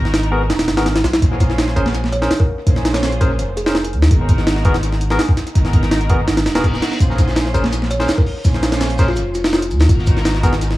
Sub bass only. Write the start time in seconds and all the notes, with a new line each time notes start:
Already playing: G#1
0.50 D#1
0.68 G#1
1.04 B1
1.22 A#1
2.67 A#1
3.39 F1
3.93 D#2
4.11 G#1
5.55 G#1
6.28 G#1
6.46 D#1
7.00 A#1
8.45 A#1
9.17 F1
9.71 D#2
9.89 G#1